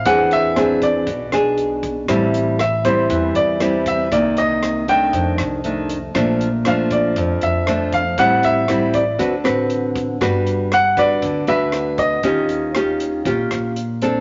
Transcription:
<<
  \new Staff \with { instrumentName = "Grand piano" } { \time 4/4 \key a \phrygian \tempo 4 = 118 fis''8 e''4 d''4 r4. | r4 e''8 c''4 d''4 e''8 | d''8 ees''4 g''4 r4. | r4 f''8 d''4 e''4 f''8 |
fis''8 e''4 d''4 r4. | r4 fis''8 d''4 e''4 ees''8~ | ees''2. r4 | }
  \new Staff \with { instrumentName = "Nylon-string guitar" } { \time 4/4 \key a \phrygian << { <c' d' gis'>4 <c' d' gis'>4 r8 <d' gis'>4. | <g c' e'>4 r8 <g c' e'>4. <g c' e'>4 | <ees bes>4. <ees a d'>4. <ees a d'>8 r8 | <f a d'>8 r8 <f a d'>2 <f a d'>8 r8 |
<g c' e'>4 <g c' e'>8 r8 <c' fis' b'>8 <c' fis' b'>4. | <d' fis' b'>4 r8 <d' fis' b'>4 <d' fis' b'>4. | <des' f' g'>4 <des' f' g'>4 <des' f' g'>4 r8 <c' d' a'>8 | } \\ { e2 b,2 | a,2 e2 | c2 f,2 | bes,2 f,2 |
a,2 d2 | g2 d2 | ees2 bes,2 | } >> }
  \new Staff \with { instrumentName = "Upright bass" } { \clef bass \time 4/4 \key a \phrygian e,2 b,,8 b,,4. | a,,2 e,8 e,4. | c,2 f,8 c,4. | bes,,2 f,8 f,4. |
a,,2 d,8 a,,4. | g,,2 d,8 d,4. | ees,2 bes,,8 bes,,4. | }
  \new DrumStaff \with { instrumentName = "Drums" } \drummode { \time 4/4 <hh bd>8 hh8 <hh ss>8 <hh bd>8 <hh bd>8 <hh ss>8 hh8 <hh bd>8 | <hh bd ss>8 hh8 <hh ss>8 <hh bd>8 <hh bd>8 hh8 <hh ss>8 <hh bd>8 | <hh bd>8 hh8 <hh ss>8 hh8 <hh bd>8 <hh ss>8 hh8 hh8 | <hh bd ss>8 hh8 <hh ss>8 <hh bd>8 <hh bd>8 hh8 <hh ss>8 <hh bd>8 |
<hh bd>8 hh8 <hh ss>8 <hh bd>8 <hh bd>8 <hh ss>8 hh8 <hh bd>8 | <hh bd ss>8 hh8 <hh ss>8 <hh bd>8 <hh bd>8 hh8 <hh ss>8 <hh bd>8 | <hh bd>8 hh8 <hh ss>8 hh8 <hh bd>8 <hh ss>8 hh8 hh8 | }
>>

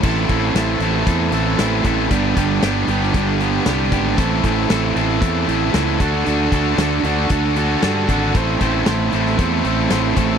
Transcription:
<<
  \new Staff \with { instrumentName = "Distorted electric guitar" } { \time 4/4 \key a \dorian \tempo 4 = 116 <a, e c' e' a'>8 <a, e c' e' a'>8 <a, e c' e' a'>8 <a, e c' e' a'>8 <a, e c' e' a'>8 <a, e c' e' a'>8 <a, e c' e' a'>8 <a, e c' e' a'>8 | <g, d g b d' g'>8 <g, d g b d' g'>8 <g, d g b d' g'>8 <g, d g b d' g'>8 <g, d g b d' g'>8 <g, d g b d' g'>8 <g, d g b d' g'>8 <g, d g b d' g'>8 | <a, e c' e' a'>8 <a, e c' e' a'>8 <a, e c' e' a'>8 <a, e c' e' a'>8 <a, e c' e' a'>8 <a, e c' e' a'>8 <a, e c' e' a'>8 <d d' fis' a'>8 | <d d' fis' a'>8 <d d' fis' a'>8 <d d' fis' a'>8 <d d' fis' a'>8 <d d' fis' a'>8 <d d' fis' a'>8 <d d' fis' a'>8 <d d' fis' a'>8 |
<a, a c' e' a'>8 <a, a c' e' a'>8 <a, a c' e' a'>8 <a, a c' e' a'>8 <a, a c' e' a'>8 <a, a c' e' a'>8 <a, a c' e' a'>8 <a, a c' e' a'>8 | }
  \new Staff \with { instrumentName = "Overdriven electric guitar" } { \time 4/4 \key a \dorian <a, e c' e' a'>8 <a, e c' e' a'>8 <a, e c' e' a'>8 <a, e c' e' a'>8 <a, e c' e' a'>8 <a, e c' e' a'>8 <a, e c' e' a'>8 <a, e c' e' a'>8 | <g, d g b d' g'>8 <g, d g b d' g'>8 <g, d g b d' g'>8 <g, d g b d' g'>8 <g, d g b d' g'>8 <g, d g b d' g'>8 <g, d g b d' g'>8 <g, d g b d' g'>8 | <a, e c' e' a'>8 <a, e c' e' a'>8 <a, e c' e' a'>8 <a, e c' e' a'>8 <a, e c' e' a'>8 <a, e c' e' a'>8 <a, e c' e' a'>8 <d d' fis' a'>8 | <d d' fis' a'>8 <d d' fis' a'>8 <d d' fis' a'>8 <d d' fis' a'>8 <d d' fis' a'>8 <d d' fis' a'>8 <d d' fis' a'>8 <d d' fis' a'>8 |
<a, a c' e' c''>8 <a, a c' e' c''>8 <a, a c' e' c''>8 <a, a c' e' c''>8 <a, a c' e' c''>8 <a, a c' e' c''>8 <a, a c' e' c''>8 <a, a c' e' c''>8 | }
  \new Staff \with { instrumentName = "Fingered electric bass" } { \clef bass \time 4/4 \key a \dorian a,,8 a,,8 a,,8 a,,8 e,8 a,,8 a,,8 a,,8 | g,,8 g,,8 g,,8 g,,8 g,,4 c,8 gis,,8 | a,,8 a,,8 a,,8 a,,8 e,8 a,,8 cis,8 d,8 | d,8 d,8 d,8 d,8 d,4 g,8 gis,,8 |
a,,8 a,,8 a,,8 a,,8 e,8 a,,8 a,,8 a,,8 | }
  \new DrumStaff \with { instrumentName = "Drums" } \drummode { \time 4/4 <cymc bd>8 <hh bd>8 <hh sn>8 hh8 <hh bd>8 hh8 <hh sn>8 <hh bd>8 | <hh bd>8 <hh bd>8 <hh sn>8 hh16 sn16 <hh bd>8 hh8 <hh sn>8 <hh bd>8 | <hh bd>8 <hh bd>8 <hh sn>8 hh8 <hh bd>8 hh8 <hh sn>8 <hh bd>8 | hh8 <hh bd>8 <hh sn>8 hh8 <hh bd>8 hh8 <hh sn>8 <hh bd>8 |
<hh bd>8 <hh bd>8 <hh sn>8 hh16 sn16 <hh bd>8 hh8 <hh sn>8 <hh bd>8 | }
>>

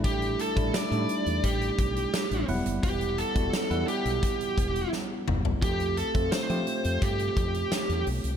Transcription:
<<
  \new Staff \with { instrumentName = "Lead electric guitar" } { \time 4/4 \key e \dorian \tempo 4 = 86 g'8 a'8 d''4 g'4. r8 | g'8 a'4 g'4. r4 | g'8 a'8 c''4 g'4. r8 | }
  \new Staff \with { instrumentName = "Tine electric piano" } { \time 4/4 \key e \dorian <g a d' e'>8 r16 <g a d' e'>16 r16 <g a d' dis' e'>4~ <g a d' dis' e'>16 r4 <fis g b e' fis''>8~ | <fis g b e' fis''>8 r16 <g b e' fis'>16 r16 <g b e' fis''>4~ <g b e' fis''>16 r4. | <a c' f' g'>8 r16 <a c' f' a'>16 r16 <a c' f' g'>4~ <a c' f' g'>16 r4. | }
  \new Staff \with { instrumentName = "Fretless electric bass" } { \clef bass \time 4/4 \key e \dorian a,,8. a,,16 r16 a,16 r16 e,16 a,,8 b,,8 r16 a,,16 e,,16 fis,,16 | e,,8. e,,16 r16 e,16 r16 b,,16 r8 e,,8 r8 fis,,8 | f,8. f,16 r16 f16 r16 f,16 g,8 f,8 r16 e,16 b,,16 c,16 | }
  \new DrumStaff \with { instrumentName = "Drums" } \drummode { \time 4/4 <hh bd>16 hh16 hh16 <hh bd>16 <hh sn>16 hh16 hh16 hh16 <hh bd>16 hh16 <hh bd>16 hh16 <hh sn>16 hh16 hho16 hh16 | <hh bd>16 hh16 hh16 <hh bd>16 <hh sn>16 hh16 hh16 hh16 <hh bd>16 hh16 <hh bd>16 hh16 sn8 toml16 tomfh16 | <hh bd>16 hh16 hh16 <hh bd>16 <hh sn>16 hh16 hh16 hh16 <hh bd>16 hh16 <hh bd>16 hh16 <hh sn>16 hh16 hho16 hh16 | }
>>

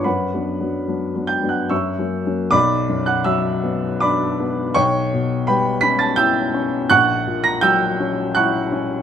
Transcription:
<<
  \new Staff \with { instrumentName = "Upright piano" } { \time 3/4 \key b \minor \tempo 4 = 81 <b' fis'' b''>4. <g'' g'''>16 <fis'' fis'''>16 <e'' cis''' e'''>4 | <d'' b'' d'''>8. <fis'' fis'''>16 <e'' e'''>4 <d'' b'' d'''>4 | <cis'' g'' cis'''>4 <b' g'' b''>8 <b'' b'''>16 <a'' a'''>16 <g'' e''' g'''>4 | <fis'' cis''' fis'''>8. <ais'' ais'''>16 <g'' e''' g'''>4 <fis'' cis''' fis'''>4 | }
  \new Staff \with { instrumentName = "Upright piano" } { \time 3/4 \key b \minor \tuplet 3/2 { fis,8 <fis b d'>8 <fis b d'>8 <fis b d'>8 <fis b d'>8 <fis b d'>8 fis,8 <fis ais cis'>8 <fis ais cis'>8 } | b,,8 fis,8 fis8 b8 d'8 b8 | b,,8 b,8 g8 cis'8 e'8 cis'8 | ais,,8 ais,8 fis8 cis'8 e'8 cis'8 | }
>>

